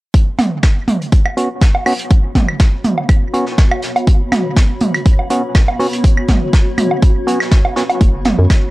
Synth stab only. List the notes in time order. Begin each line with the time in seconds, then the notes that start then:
1.37 B3 C#4 F#4
1.86 B3 C#4 F#4
3.34 B3 C#4 F#4
5.30 B3 C#4 F#4
5.79 B3 C#4 F#4
7.27 B3 C#4 F#4
7.76 B3 C#4 F#4